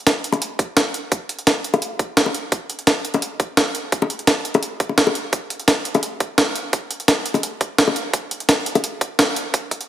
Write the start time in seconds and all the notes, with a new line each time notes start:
0.07 snare, closed hi-hat
0.24 closed hi-hat
0.32 closed hi-hat, high bongo
0.42 closed hi-hat
0.59 kick, closed hi-hat
0.77 snare, closed hi-hat
0.94 closed hi-hat
1.12 kick, closed hi-hat
1.29 closed hi-hat
1.39 closed hi-hat
1.47 snare, closed hi-hat
1.64 closed hi-hat
1.74 closed hi-hat, high bongo
1.82 closed hi-hat
1.99 kick, closed hi-hat
2.17 snare, closed hi-hat
2.26 high bongo
2.35 closed hi-hat
2.52 kick, closed hi-hat
2.70 closed hi-hat
2.79 closed hi-hat
2.87 snare, closed hi-hat
3.05 closed hi-hat
3.14 closed hi-hat, high bongo
3.22 closed hi-hat
3.40 kick, closed hi-hat
3.57 snare, closed hi-hat
3.75 closed hi-hat
3.92 kick, closed hi-hat
4.02 high bongo
4.10 closed hi-hat
4.19 closed hi-hat
4.27 snare, closed hi-hat
4.45 closed hi-hat
4.54 closed hi-hat, high bongo
4.63 closed hi-hat
4.80 kick, closed hi-hat
4.89 high bongo
4.98 snare, closed hi-hat
5.07 high bongo
5.15 closed hi-hat
5.33 kick, closed hi-hat
5.50 closed hi-hat
5.60 closed hi-hat
5.68 snare, closed hi-hat
5.85 closed hi-hat
5.95 closed hi-hat, high bongo
6.03 closed hi-hat
6.20 kick, closed hi-hat
6.38 snare, closed hi-hat
6.56 closed hi-hat
6.73 kick, closed hi-hat
6.91 closed hi-hat
7.00 closed hi-hat
7.08 snare, closed hi-hat
7.26 closed hi-hat
7.34 closed hi-hat, high bongo
7.43 closed hi-hat
7.61 kick, closed hi-hat
7.78 snare, closed hi-hat
7.88 high bongo
7.96 closed hi-hat
8.13 kick, closed hi-hat
8.31 closed hi-hat
8.40 closed hi-hat
8.49 snare, closed hi-hat
8.66 closed hi-hat
8.75 closed hi-hat, high bongo
8.84 closed hi-hat
9.01 kick, closed hi-hat
9.19 snare, closed hi-hat
9.36 closed hi-hat
9.54 kick, closed hi-hat
9.71 kick, closed hi-hat
9.81 closed hi-hat